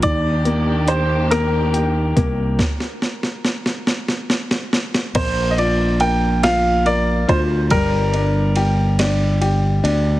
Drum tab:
CC |------------|------------|x-----------|------------|
RD |------------|------------|x-x-x-x-x-x-|x-x-x-x-x-x-|
HH |x-x-x-x-x-x-|------------|------------|------------|
SD |------r-----|oooooooooooo|------o-----|------o-----|
BD |o---------o-|o-----------|o---------o-|o-----------|